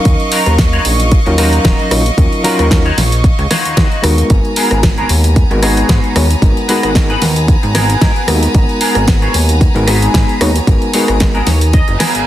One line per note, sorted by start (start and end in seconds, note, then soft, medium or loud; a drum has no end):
0.00 1.22 F#3 medium
0.00 1.23 C#4 medium
0.00 1.23 D#4 medium
0.00 1.24 A#4 loud
0.00 4.26 D#5 medium
0.00 1.23 F5 medium
0.00 4.26 F5 medium
0.00 4.26 C#6 medium
0.05 0.16 D#2 loud
0.05 kick loud
0.05 closed hi-hat medium
0.20 closed hi-hat soft
0.32 0.53 D#4 loud
0.32 0.53 F4 loud
0.32 0.53 F#4 loud
0.32 0.53 A#4 loud
0.32 open hi-hat loud
0.46 0.79 D#2 medium
0.46 cross-stick medium
0.46 closed hi-hat medium
0.58 kick loud
0.58 snare loud
0.58 closed hi-hat soft
0.73 0.85 D#4 medium
0.73 0.85 F4 medium
0.73 0.85 F#4 medium
0.73 0.85 C#5 loud
0.73 closed hi-hat soft
0.85 1.20 A#1 medium
0.85 open hi-hat loud
1.00 muted clean electric guitar stroke soft
1.00 closed hi-hat medium
1.11 muted clean electric guitar stroke soft
1.11 kick loud
1.11 closed hi-hat medium
1.26 1.59 D#2 medium
1.26 1.35 F#3 medium
1.26 1.35 C#4 medium
1.26 1.35 D#4 medium
1.26 1.36 F4 medium
1.26 1.36 A#4 loud
1.26 muted clean electric guitar stroke loud
1.26 closed hi-hat soft
1.38 1.88 F#3 medium
1.38 1.89 C#4 medium
1.38 1.89 D#4 medium
1.38 1.91 D#4 loud
1.38 1.91 F4 loud
1.38 1.91 F#4 medium
1.38 1.91 A#4 loud
1.38 1.89 A#4 loud
1.38 1.89 F5 medium
1.38 cross-stick medium
1.38 open hi-hat loud
1.53 closed hi-hat medium
1.65 1.75 D#1 medium
1.65 kick loud
1.65 snare loud
1.65 closed hi-hat soft
1.79 closed hi-hat soft
1.91 2.11 A#1 medium
1.91 2.01 F#3 medium
1.91 2.01 C#4 medium
1.91 2.01 D#4 medium
1.91 2.02 F4 medium
1.91 2.02 D#5 loud
1.91 cross-stick medium
1.91 open hi-hat loud
2.06 closed hi-hat soft
2.17 2.28 D#2 medium
2.17 2.41 F#3 medium
2.17 2.41 C#4 medium
2.17 2.41 D#4 medium
2.17 2.42 F4 medium
2.17 2.42 A#4 medium
2.17 kick loud
2.17 closed hi-hat soft
2.33 closed hi-hat soft
2.44 2.68 F#3 medium
2.44 2.68 C#4 medium
2.44 2.68 D#4 medium
2.44 2.65 D#4 loud
2.44 2.68 F4 medium
2.44 2.65 F4 loud
2.44 2.65 F#4 medium
2.44 2.65 A#4 loud
2.44 2.68 A#4 loud
2.44 open hi-hat loud
2.59 2.92 D#2 medium
2.59 cross-stick medium
2.59 closed hi-hat medium
2.70 2.87 F#3 medium
2.70 2.87 C#4 medium
2.70 2.87 D#4 medium
2.70 2.87 F4 medium
2.70 2.87 A#4 loud
2.70 kick loud
2.70 snare loud
2.70 closed hi-hat soft
2.85 2.97 D#4 medium
2.85 2.98 F4 medium
2.85 2.98 F#4 medium
2.85 2.98 C#5 loud
2.85 closed hi-hat soft
2.98 3.32 A#1 medium
2.98 snare medium
2.98 open hi-hat loud
3.12 muted clean electric guitar stroke soft
3.12 closed hi-hat medium
3.24 muted clean electric guitar stroke soft
3.24 kick loud
3.24 closed hi-hat soft
3.39 3.47 C#2 loud
3.39 muted clean electric guitar stroke medium
3.39 closed hi-hat soft
3.51 4.04 D#4 medium
3.51 4.04 F4 medium
3.51 4.04 F#4 loud
3.51 4.04 C#5 loud
3.51 cross-stick medium
3.51 snare medium
3.51 open hi-hat loud
3.65 3.75 D#2 soft
3.65 closed hi-hat medium
3.77 3.87 D#2 medium
3.77 kick loud
3.77 snare loud
3.77 closed hi-hat soft
3.92 closed hi-hat soft
4.02 4.23 D#2 medium
4.02 5.47 G#3 medium
4.02 5.47 B3 medium
4.02 5.47 D#4 medium
4.02 5.47 F#4 medium
4.02 5.48 A#4 medium
4.02 cross-stick medium
4.02 open hi-hat medium
4.18 closed hi-hat soft
4.30 4.40 G#1 loud
4.30 12.27 B3 medium
4.30 12.27 G#5 medium
4.30 12.27 A#5 medium
4.30 kick loud
4.30 closed hi-hat medium
4.45 closed hi-hat soft
4.56 4.77 B3 loud
4.56 4.77 F#4 medium
4.56 4.77 G#4 loud
4.56 4.77 A#4 loud
4.56 open hi-hat loud
4.71 5.04 G#1 medium
4.71 cross-stick medium
4.71 closed hi-hat soft
4.83 kick loud
4.83 snare loud
4.83 closed hi-hat soft
4.98 5.10 B3 medium
4.98 5.10 F#4 medium
4.98 5.10 G#4 medium
4.98 5.10 A#4 loud
4.98 closed hi-hat soft
5.09 5.44 D#2 medium
5.09 open hi-hat medium
5.24 muted clean electric guitar stroke soft
5.24 closed hi-hat medium
5.36 muted clean electric guitar stroke soft
5.36 kick loud
5.36 closed hi-hat soft
5.51 5.84 G#1 medium
5.51 5.60 G#3 medium
5.51 5.60 B3 medium
5.51 5.60 D#4 medium
5.51 5.60 F#4 medium
5.51 5.61 A#4 loud
5.51 muted clean electric guitar stroke medium
5.51 closed hi-hat soft
5.62 6.13 G#3 medium
5.62 6.13 B3 medium
5.62 6.16 B3 medium
5.62 6.13 D#4 medium
5.62 6.13 F#4 medium
5.62 6.16 F#4 medium
5.62 6.16 G#4 loud
5.62 6.16 C#5 loud
5.62 6.13 A#5 loud
5.62 cross-stick medium
5.62 open hi-hat loud
5.77 closed hi-hat medium
5.89 6.00 G#2 medium
5.89 kick loud
5.89 snare loud
5.89 closed hi-hat soft
6.04 closed hi-hat soft
6.16 6.35 D#2 medium
6.16 6.26 G#3 medium
6.16 6.26 B3 medium
6.16 6.26 D#4 medium
6.16 6.27 F#4 medium
6.16 6.27 C#5 loud
6.16 cross-stick medium
6.16 open hi-hat medium
6.30 closed hi-hat soft
6.42 6.53 G#1 loud
6.42 6.66 G#3 medium
6.42 6.66 B3 medium
6.42 6.66 D#4 medium
6.42 6.66 F#4 medium
6.42 6.66 A#4 medium
6.42 kick loud
6.42 closed hi-hat medium
6.57 closed hi-hat soft
6.69 6.93 G#3 medium
6.69 6.93 B3 medium
6.69 6.89 B3 loud
6.69 6.93 D#4 medium
6.69 6.89 F#4 loud
6.69 6.93 F#4 medium
6.69 6.90 G#4 loud
6.69 6.93 A#4 medium
6.69 6.90 B4 loud
6.69 open hi-hat loud
6.83 7.16 G#1 medium
6.83 cross-stick medium
6.83 closed hi-hat medium
6.95 7.12 G#3 medium
6.95 7.12 B3 medium
6.95 7.12 D#4 medium
6.95 7.12 F#4 medium
6.95 7.12 A#4 loud
6.95 kick loud
6.95 snare loud
6.95 closed hi-hat soft
7.10 7.22 B3 medium
7.10 7.22 F#4 medium
7.10 7.22 G#4 medium
7.10 7.22 B4 medium
7.10 closed hi-hat soft
7.22 7.56 D#2 medium
7.22 snare medium
7.22 open hi-hat medium
7.36 muted clean electric guitar stroke soft
7.36 closed hi-hat medium
7.48 muted clean electric guitar stroke soft
7.48 kick loud
7.48 closed hi-hat medium
7.63 7.96 G#1 medium
7.63 muted clean electric guitar stroke medium
7.63 closed hi-hat soft
7.75 8.28 B3 loud
7.75 8.28 F#4 loud
7.75 8.28 G#4 loud
7.75 8.28 A#4 loud
7.75 cross-stick medium
7.75 snare medium
7.75 open hi-hat loud
7.90 closed hi-hat medium
8.01 8.12 G#2 medium
8.01 kick loud
8.01 snare loud
8.01 closed hi-hat medium
8.16 closed hi-hat soft
8.27 8.48 D#2 medium
8.27 9.72 G#3 medium
8.27 9.72 B3 medium
8.27 9.72 D#4 medium
8.27 9.73 F#4 medium
8.27 9.73 A#4 loud
8.27 cross-stick medium
8.27 open hi-hat medium
8.43 closed hi-hat medium
8.54 8.65 G#1 loud
8.54 kick loud
8.54 closed hi-hat medium
8.69 closed hi-hat soft
8.81 9.02 B3 loud
8.81 9.02 F#4 loud
8.81 9.02 G#4 loud
8.81 9.02 A#4 loud
8.81 open hi-hat loud
8.95 9.29 G#1 medium
8.95 cross-stick medium
8.95 closed hi-hat medium
9.08 kick loud
9.08 snare loud
9.08 closed hi-hat medium
9.22 9.34 B3 medium
9.22 9.34 F#4 medium
9.22 9.35 G#4 medium
9.22 9.35 C#5 loud
9.22 closed hi-hat soft
9.34 9.69 D#2 medium
9.34 open hi-hat medium
9.49 muted clean electric guitar stroke soft
9.49 closed hi-hat medium
9.60 muted clean electric guitar stroke soft
9.60 kick loud
9.60 closed hi-hat medium
9.75 10.09 G#1 loud
9.75 9.84 G#3 loud
9.75 9.85 B3 medium
9.75 9.85 D#4 medium
9.75 9.85 F#4 medium
9.75 9.85 A#4 loud
9.75 muted clean electric guitar stroke loud
9.75 closed hi-hat soft
9.87 10.38 G#3 medium
9.87 10.40 B3 medium
9.87 10.38 B3 medium
9.87 10.38 D#4 medium
9.87 10.40 F#4 loud
9.87 10.38 F#4 medium
9.87 10.40 G#4 loud
9.87 10.41 B4 loud
9.87 10.38 A#5 loud
9.87 cross-stick medium
9.87 open hi-hat loud
10.02 closed hi-hat medium
10.14 10.25 G#2 loud
10.14 kick loud
10.14 snare loud
10.14 closed hi-hat medium
10.29 closed hi-hat soft
10.41 10.60 D#2 medium
10.41 10.51 G#3 medium
10.41 10.51 B3 medium
10.41 10.51 D#4 medium
10.41 10.51 F#4 medium
10.41 10.51 C#5 loud
10.41 cross-stick medium
10.41 open hi-hat medium
10.56 closed hi-hat medium
10.67 10.78 G#1 loud
10.67 10.91 G#3 medium
10.67 10.91 B3 medium
10.67 10.91 D#4 medium
10.67 10.91 F#4 medium
10.67 10.92 A#4 medium
10.67 kick loud
10.67 closed hi-hat medium
10.82 closed hi-hat soft
10.94 11.18 G#3 medium
10.94 11.14 B3 loud
10.94 11.18 B3 medium
10.94 11.18 D#4 medium
10.94 11.14 F#4 medium
10.94 11.18 F#4 medium
10.94 11.14 G#4 loud
10.94 11.18 A#4 loud
10.94 11.14 C#5 loud
10.94 open hi-hat loud
11.08 11.42 G#1 medium
11.08 cross-stick medium
11.08 closed hi-hat medium
11.20 11.37 G#3 medium
11.20 11.37 B3 medium
11.20 11.37 D#4 medium
11.20 11.37 F#4 medium
11.20 11.37 A#4 loud
11.20 kick loud
11.20 snare loud
11.20 closed hi-hat medium
11.34 11.47 B3 medium
11.34 11.47 F#4 medium
11.34 11.47 G#4 medium
11.34 11.46 A#4 loud
11.34 closed hi-hat soft
11.47 11.81 D#2 medium
11.47 11.60 C#5 medium
11.47 snare medium
11.47 open hi-hat medium
11.61 muted clean electric guitar stroke soft
11.61 closed hi-hat medium
11.73 12.23 D#5 medium
11.73 muted clean electric guitar stroke soft
11.73 kick loud
11.73 closed hi-hat medium
11.73 reverse cymbal medium
11.88 11.97 F#1 loud
11.88 muted clean electric guitar stroke medium
11.88 closed hi-hat soft
11.99 12.27 B3 loud
11.99 12.27 F#4 medium
11.99 12.27 G#4 loud
11.99 12.27 A#4 loud
11.99 cross-stick medium
11.99 snare medium
11.99 open hi-hat loud
12.15 12.25 G#1 soft
12.15 closed hi-hat medium